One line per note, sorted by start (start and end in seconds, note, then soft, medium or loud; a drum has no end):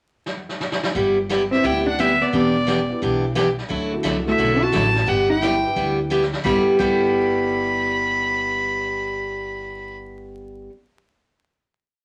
0.26 snare medium
0.49 snare medium
0.61 snare medium
0.72 snare medium
0.83 snare loud
0.95 1.50 G1 medium
0.95 1.17 G3 medium
0.95 1.17 B3 medium
0.95 1.17 E4 medium
0.95 1.18 G4 medium
0.95 brush sweep medium
0.95 kick soft
1.29 1.41 G3 medium
1.29 1.41 B3 medium
1.29 1.41 E4 medium
1.29 1.42 G4 medium
1.29 snare medium
1.29 hi-hat pedal medium
1.51 1.96 B3 medium
1.51 1.64 C4 medium
1.51 1.96 D4 medium
1.51 1.96 E4 medium
1.51 1.96 G4 medium
1.51 1.67 E5 medium
1.51 snare soft
1.64 2.19 D2 medium
1.64 1.86 G3 medium
1.64 1.86 B3 medium
1.64 1.86 E4 medium
1.64 1.86 G4 medium
1.64 1.87 G5 loud
1.64 brush sweep medium
1.64 kick soft
1.86 1.99 D4 medium
1.86 2.02 F#5 medium
1.99 2.10 G3 medium
1.99 2.10 B3 medium
1.99 2.21 B3 medium
1.99 2.11 E4 medium
1.99 2.11 G4 medium
1.99 2.23 E5 loud
1.99 snare medium
1.99 hi-hat pedal medium
2.21 2.33 B3 medium
2.21 2.33 D5 medium
2.21 snare soft
2.33 2.88 E1 medium
2.33 2.55 E3 medium
2.33 2.55 B3 soft
2.33 2.99 B3 medium
2.33 2.55 D4 medium
2.33 2.55 G4 medium
2.33 2.99 D5 medium
2.33 brush sweep medium
2.33 kick soft
2.67 2.79 E3 medium
2.67 2.79 B3 medium
2.67 2.79 D4 medium
2.67 2.79 G4 medium
2.67 snare medium
2.67 hi-hat pedal medium
2.89 3.34 B3 medium
2.89 3.34 D4 medium
2.89 3.34 E4 medium
2.89 3.34 G4 medium
3.02 3.57 B1 medium
3.02 3.24 E3 medium
3.02 3.24 B3 medium
3.02 3.24 D4 medium
3.02 3.24 G4 medium
3.02 brush sweep soft
3.02 kick soft
3.35 3.47 E3 medium
3.35 3.47 B3 medium
3.35 3.48 D4 medium
3.35 3.48 G4 medium
3.35 snare medium
3.35 hi-hat pedal medium
3.58 snare soft
3.69 3.98 D2 medium
3.69 3.92 D3 soft
3.69 3.92 F#3 soft
3.69 3.92 A3 medium
3.69 3.92 E4 medium
3.69 3.92 F#4 medium
3.69 brush sweep medium
3.69 kick soft
3.92 4.25 A3 medium
3.92 4.25 D4 medium
3.92 4.25 E4 medium
3.92 4.25 F#4 medium
4.03 4.34 C2 medium
4.03 4.16 D3 medium
4.03 4.16 F#3 medium
4.03 4.16 A3 medium
4.03 4.16 E4 medium
4.03 4.16 F#4 medium
4.03 snare medium
4.03 hi-hat pedal soft
4.26 4.71 A3 medium
4.26 4.61 A3 medium
4.26 4.71 D4 medium
4.26 4.71 E4 medium
4.26 4.71 F#4 medium
4.26 4.64 E5 medium
4.26 snare soft
4.38 4.68 B1 medium
4.38 4.60 D3 medium
4.38 4.61 F#3 medium
4.38 4.61 A3 medium
4.38 4.61 E4 medium
4.38 4.61 F#4 medium
4.38 brush sweep soft
4.38 kick soft
4.61 5.08 F#4 medium
4.61 5.10 A5 loud
4.72 5.02 A1 medium
4.72 4.85 D3 medium
4.72 4.85 F#3 medium
4.72 4.85 A3 medium
4.72 4.85 E4 medium
4.72 4.85 F#4 medium
4.72 snare medium
4.72 hi-hat pedal medium
4.96 snare medium
5.06 5.63 G1 medium
5.06 5.29 G3 medium
5.06 5.29 B3 medium
5.06 5.29 D4 medium
5.06 5.29 E4 medium
5.06 5.29 G4 medium
5.06 5.30 F#5 loud
5.06 brush sweep medium
5.06 kick soft
5.30 5.94 E4 medium
5.30 5.95 G5 loud
5.42 5.54 G3 medium
5.42 5.54 B3 medium
5.42 5.54 E4 medium
5.42 5.55 G4 medium
5.42 snare medium
5.42 hi-hat pedal soft
5.64 6.08 B3 medium
5.64 6.08 D4 medium
5.64 6.08 E4 medium
5.64 6.09 G4 medium
5.76 6.31 D2 medium
5.76 5.98 G3 medium
5.76 5.98 B3 medium
5.76 5.99 E4 medium
5.76 5.99 G4 medium
5.76 brush sweep soft
5.76 kick soft
6.10 6.22 G3 medium
6.10 6.22 B3 medium
6.10 6.22 E4 medium
6.10 6.23 G4 medium
6.10 hi-hat pedal medium
6.22 snare medium
6.33 snare medium
6.40 6.56 G2 medium
6.40 6.57 G3 medium
6.40 6.78 G3 medium
6.44 6.57 G1 medium
6.44 6.80 B3 medium
6.44 6.59 B3 medium
6.44 6.81 E4 medium
6.44 6.60 E4 medium
6.44 6.57 G4 medium
6.44 6.81 G4 medium
6.44 6.57 B5 medium
6.44 kick medium
6.44 snare medium
6.51 6.61 A4 medium
6.74 10.66 G2 medium
6.74 10.68 G3 medium
6.79 10.66 G1 medium
6.79 10.69 G3 medium
6.79 10.69 B3 medium
6.79 10.70 B3 medium
6.79 10.70 E4 medium
6.79 10.71 E4 medium
6.79 10.66 G4 medium
6.79 10.71 G4 medium
6.79 9.96 B5 medium
6.79 kick medium
6.79 crash soft
6.85 10.72 A4 medium